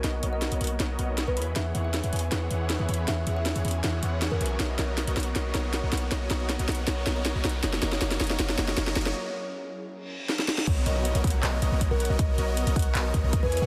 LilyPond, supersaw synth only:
\new Staff \with { instrumentName = "Supersaw synth" } { \time 4/4 \key b \major \tempo 4 = 158 <b fis' ais' cis'' dis''>8 <b fis' ais' cis'' dis''>8. <b fis' ais' cis'' dis''>16 <b fis' ais' cis'' fis''>16 r16 <b fis' ais' cis'' dis''>8 <b fis' ais' cis'' dis''>8. <b fis' ais' cis'' dis''>16 <e e' gis' cis'' b''>8 | <e e' gis' cis'' fis''>8 <e e' gis' cis'' fis''>8. <e e' gis' cis'' fis''>16 <e e' gis' cis'' gis''>16 r16 <e e' gis' cis'' fis''>8 <e e' gis' cis'' fis''>8. <e e' gis' cis'' fis''>16 <e e' gis' cis'' b''>8 | <e e' gis' cis'' fis''>8 <e e' gis' cis'' fis''>8. <e e' gis' cis'' fis''>16 <e e' gis' cis'' gis''>16 r16 <e e' gis' cis'' fis''>8 <e e' gis' cis'' fis''>8. <e e' gis' cis'' fis''>16 <b fis' ais' cis'' gis''>8 | <b fis' ais' cis'' dis''>8 <b fis' ais' cis'' dis''>8. <b fis' ais' cis'' dis''>16 <b fis' ais' cis'' fis''>16 r16 <b fis' ais' cis'' dis''>8 <b fis' ais' cis'' dis''>8. <b fis' ais' cis'' dis''>16 <b fis' ais' cis'' fis''>16 r16 |
<b fis' ais' cis'' dis''>8 <b fis' ais' cis'' dis''>8. <b fis' ais' cis'' dis''>16 <b fis' ais' cis'' fis''>16 r16 <b fis' ais' cis'' dis''>8 <b fis' ais' cis'' dis''>8. <b fis' ais' cis'' dis''>16 <b fis' ais' cis'' fis''>16 r16 | <ais fis' ais' cis'' dis''>8 <ais fis' ais' cis'' dis''>8 <ais fis' ais' cis'' dis''>8 <ais fis' ais' cis'' dis''>8 <ais fis' ais' cis'' dis''>8 <ais fis' ais' cis'' dis''>8 <ais fis' ais' cis'' dis''>8 <ais fis' ais' cis'' dis''>8 | r1 | <b fis' ais' cis'' dis''>8 <b fis' ais' cis'' dis''>8. <b fis' ais' cis'' dis''>16 <b fis' ais' cis'' fis''>16 r16 <b fis' ais' cis'' dis''>8 <b fis' ais' cis'' dis''>16 <b fis' ais' cis'' dis''>8 <b fis' ais' cis'' fis''>8 <b fis' ais' cis'' dis''>16 |
<b fis' ais' cis'' dis''>8 <b fis' ais' cis'' dis''>8. <b fis' ais' cis'' dis''>16 <b fis' ais' cis'' fis''>16 r16 <b fis' ais' cis'' dis''>8 <b fis' ais' cis'' dis''>16 <b fis' ais' cis'' dis''>8 <e e' gis' cis'' gis''>8 <e e' gis' cis'' fis''>16 | }